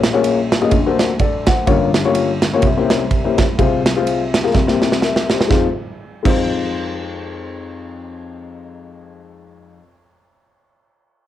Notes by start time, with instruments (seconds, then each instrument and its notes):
Already playing: upright piano A#1 A#2
0.03 snare, ride
0.13 upright piano A#3 C#4 F4 G#4 C#5
0.24 ride
0.52 snare, ride
0.61 upright piano A#3 C#4 F4 G#4 D#5
0.71 upright piano D2 D3, kick, ride
0.86 upright piano A#3 D4 F#4 A4 C5
0.99 snare, ride
1.19 upright piano A4 D5, kick, ride
1.46 upright piano C5 F#5, kick, snare, ride
1.67 upright piano G1 G2 A#3 C#4 F4 G4 C#5, kick, ride
1.94 snare, ride
2.05 upright piano A#3 C#4 F4 G4 C#5
2.15 ride
2.42 snare, ride
2.53 upright piano A#3 C#4 F4 G4 C#5
2.62 upright piano C2 C3, kick, ride
2.77 upright piano A#3 C#4 E4 G4 C5
2.90 snare, ride
3.11 kick, ride
3.24 upright piano A#3 C#4 E4 G4 C5
3.38 kick, snare, ride
3.58 upright piano C2 C3 F4 G#4 C5, kick, ride
3.86 snare, ride
3.96 upright piano F4 G#4 C5
4.07 ride
4.34 snare, ride
4.44 upright piano F4 G#4 A#4
4.54 upright piano C2 C3, kick, snare
4.67 upright piano A#3 C4 E4 G4 C5, snare
4.82 snare
4.92 snare
5.01 upright piano A#4 E5, snare
5.16 snare
5.30 upright piano G4 C5, snare
5.41 snare
5.48 upright piano F2 G#3 D#4 F4, kick, snare
5.52 upright piano C5
6.23 upright piano F2 G#3 D#4 F4, kick, crash
6.27 upright piano C5